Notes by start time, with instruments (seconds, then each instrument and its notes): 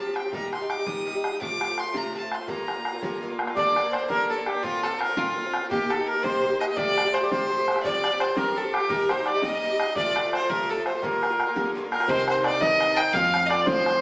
0.00 bouzouki C4 G4, fiddle A5
0.07 bouzouki F3 C4 G4
0.16 fiddle G5, bodhran
0.24 bouzouki F3 C4 G4
0.33 bouzouki A#2 G3 D#4 G4, fiddle A#5, bodhran
0.52 bouzouki A#2 G3 D#4 G4, fiddle C6, bodhran
0.60 bouzouki G3 D#4 G4
0.70 fiddle D6, bodhran
0.77 bouzouki G3 D#4 G4
0.86 bouzouki A#2 G3 D#4 G4, fiddle D#6, bodhran
1.05 bouzouki A#2 G3 D#4 G4, bodhran
1.15 bouzouki G3 D#4 G4
1.24 bodhran
1.32 bouzouki G3 D#4 G4
1.40 bouzouki C3 F3 A3 F4, fiddle D6, bodhran
1.60 bouzouki C3 F3 A3 F4, bodhran
1.68 bouzouki F3 A3 F4
1.78 fiddle C6, bodhran
1.85 bouzouki F3 A3 F4
1.93 bouzouki C3 F3 A3 F4, bodhran
1.97 fiddle A#5
2.12 bouzouki C3 F3 A3 F4, bodhran
2.17 fiddle A5
2.21 bouzouki F3 A3 F4
2.32 fiddle C6, bodhran
2.38 bouzouki F3 A3 F4
2.47 bouzouki G2 D3 A#3 F4, fiddle A#5, bodhran
2.67 bouzouki G2 D3 A#3 F4, bodhran
2.76 bouzouki D3 A#3 F4
2.85 bodhran
2.93 bouzouki D3 A#3 F4
3.02 bouzouki G2 D3 A#3 F4, bodhran
3.21 bouzouki G2 D3 A#3 F4, bodhran
3.30 bouzouki D3 A#3 F4
3.39 bodhran
3.47 bouzouki D3 A#3 F4, bodhran
3.56 bouzouki G2 D3 A#3 D4, accordion D5, fiddle D5, bodhran
3.75 bouzouki G2 D3 A#3 D4, bodhran
3.83 bouzouki D3 A#3 D4
3.91 accordion C5, fiddle C5, bodhran
4.00 bouzouki D3 A#3 D4
4.09 bouzouki G2 D3 A#3 D4, accordion A#4, fiddle A#4, bodhran
4.29 bouzouki G2 D3 A#3 D4, accordion A4, fiddle A4, bodhran
4.38 bouzouki D3 A#3 D4
4.46 accordion G4, fiddle G4, bodhran
4.54 bouzouki D3 A#3 D4
4.63 bouzouki A#2 D3 C4 F4, fiddle F4, accordion F4, bodhran
4.82 bouzouki A#2 D3 C4 F4, accordion A4, fiddle A4, bodhran
4.92 bouzouki D3 C4 F4
4.99 fiddle A#4, accordion A#4, bodhran
5.08 bouzouki D3 C4 F4
5.17 bouzouki A#2 D3 C4 F4, fiddle F4, accordion F4, bodhran
5.36 bouzouki A#2 D3 C4 F4, bodhran
5.45 bouzouki D3 C4 F4
5.54 bodhran
5.62 bouzouki D3 C4 F4
5.70 bouzouki C3 A#3 D#4 G4, accordion G4, fiddle G4, bodhran
5.89 bouzouki C3 A#3 D#4 G4, fiddle A4, accordion A4, bodhran
5.97 bouzouki A#3 D#4 G4
6.07 fiddle A#4, accordion A#4
6.13 bouzouki A#3 D#4 G4
6.22 bouzouki C3 A#3 D#4 G4, fiddle C5, accordion C5, bodhran
6.42 bouzouki C3 A#3 D#4 G4, bodhran
6.50 bouzouki A#3 D#4 G4
6.60 fiddle D#5, accordion D#5, bodhran
6.67 bouzouki A#3 D#4 G4, fiddle D#5
6.76 bouzouki C3 F3 A3 G4, fiddle D5, accordion D5, bodhran
6.96 bouzouki C3 F3 A3 G4, bodhran
7.04 bouzouki F3 A3 G4
7.13 accordion C5, fiddle C5, bodhran
7.21 bouzouki F3 A3 G4, accordion D5
7.29 bouzouki C3 F3 A3 G4, accordion C5, fiddle C5, bodhran
7.49 bouzouki C3 F3 A3 G4, bodhran
7.57 bouzouki F3 A3 G4
7.68 bodhran
7.74 bouzouki F3 A3 G4, bodhran
7.83 bouzouki G2 F3 C4 G4, fiddle D5, accordion D5, bodhran
8.01 bouzouki G2 F3 C4 G4, bodhran
8.11 bouzouki F3 C4 G4
8.20 fiddle C5, accordion C5, bodhran
8.26 bouzouki F3 C4 G4
8.36 bouzouki G2 F3 C4 G4, accordion A#4, fiddle A#4, bodhran
8.55 bouzouki G2 F3 C4 G4, accordion A4, fiddle A4, bodhran
8.64 bouzouki F3 C4 G4
8.72 accordion G4, fiddle G4, bodhran
8.80 bouzouki F3 C4 G4
8.88 bouzouki A#2 G3 D#4 G4, accordion A#4, fiddle A#4, bodhran
9.08 bouzouki A#2 G3 D#4 G4, accordion C5, fiddle C5, bodhran
9.17 bouzouki G3 D#4 G4
9.25 accordion D5, fiddle D5, bodhran
9.34 bouzouki G3 D#4 G4
9.41 bouzouki A#2 G3 D#4 G4, accordion D#5, fiddle D#5, bodhran
9.62 bouzouki A#2 G3 D#4 G4, bodhran
9.71 bouzouki G3 D#4 G4
9.78 accordion D#5, bodhran
9.87 bouzouki G3 D#4 G4
9.91 accordion D5 D#5
9.95 bouzouki C3 F3 A3 F4, fiddle D5, bodhran
10.14 bouzouki C3 F3 A3 F4, accordion D5, bodhran
10.23 bouzouki F3 A3 F4
10.32 accordion C5, fiddle C5, bodhran
10.41 bouzouki F3 A3 F4
10.49 bouzouki C3 F3 A3 F4, accordion A#4, fiddle A#4, bodhran
10.68 bouzouki C3 F3 A3 F4, accordion A4, fiddle A4, bodhran
10.77 bouzouki F3 A3 F4
10.85 accordion C5, fiddle C5, bodhran
10.94 bouzouki F3 A3 F4, accordion C5, fiddle C5
11.02 bouzouki G2 D3 A#3 F4, accordion A#4, fiddle A#4, bodhran
11.22 bouzouki G2 D3 A#3 F4, bodhran
11.30 bouzouki D3 A#3 F4
11.40 bodhran
11.47 bouzouki D3 A#3 F4
11.56 bouzouki G2 D3 A#3 F4, bodhran
11.75 bouzouki G2 D3 A#3 F4, bodhran
11.84 bouzouki D3 A#3 F4
11.92 fiddle A#4, accordion A#4, bodhran
12.00 bouzouki D3 A#3 F4, bodhran
12.08 fretless electric bass C2, bouzouki G2 D#3 C4 D#4, accordion C5, fiddle C5, bodhran
12.28 accordion C5, fiddle C5, bodhran
12.44 bouzouki G2 D#3 C4 D#4, accordion D5, fiddle D5, bodhran
12.60 bouzouki G2 D#3 C4 D#4, fiddle D#5, accordion D#5, bodhran
12.80 bodhran
12.94 bouzouki C4 D#4, fiddle G5, accordion G5 A5, bodhran
12.99 bouzouki D#3
13.13 fretless electric bass F2, bouzouki A2 F3 C4 F4, fiddle F5, accordion F5, bodhran
13.34 bodhran
13.46 bouzouki A2, accordion D5, fiddle D5 D#5
13.50 bouzouki F3 C4 F4, bodhran
13.61 fiddle D5
13.65 bouzouki A2 F3 C4 F4, accordion C5, fiddle C5, bodhran
13.86 bodhran